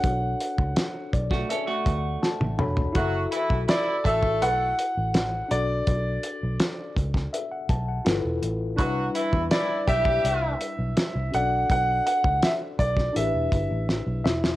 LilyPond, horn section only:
\new Staff \with { instrumentName = "Horn section" } { \time 4/4 \key b \minor \tempo 4 = 82 r1 | <fis fis'>8 <e e'>8 <e e'>8 <a a'>4 r4. | r1 | <fis fis'>8 <e e'>8 <e e'>8 <g g'>4 r4. |
r1 | }